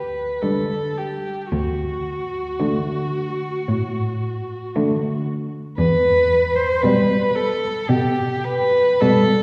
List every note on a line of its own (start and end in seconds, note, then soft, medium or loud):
0.00 0.23 D2 soft
0.00 0.43 B4 medium
0.42 1.27 D3 soft
0.42 1.27 G3 soft
0.42 0.99 A4 medium
0.98 1.52 G4 soft
1.52 2.40 D2 medium
1.52 5.23 F#4 medium
2.60 3.43 D3 soft
2.60 3.44 A3 soft
3.69 4.55 A2 medium
4.76 5.54 D3 medium
4.76 5.54 A3 medium
5.77 6.63 E2 medium
5.77 6.57 B4 medium
6.56 6.83 C5 medium
6.82 7.64 B2 medium
6.82 7.65 G3 medium
6.82 7.37 B4 medium
7.36 7.90 A4 medium
7.89 8.81 B2 medium
7.89 8.46 G4 medium
8.44 9.02 B4 loud
9.01 9.43 B2 medium
9.01 9.43 G3 medium
9.01 9.43 A4 medium